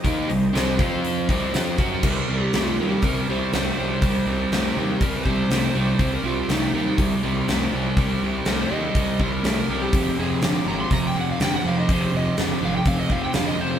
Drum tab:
CC |--------|x-------|--------|--------|
HH |oooooooo|--o-o-o-|o-o-o-o-|o-o-o-o-|
SD |--o---o-|--o---o-|--o---o-|--o---o-|
BD |o--o-o-o|o---o---|o---oo--|o---o---|

CC |--------|--------|--------|
HH |o-o-o-o-|o-o-o-o-|o-o-o-o-|
SD |--o---o-|--o---o-|--o---o-|
BD |o---oo--|o---o---|o---oo--|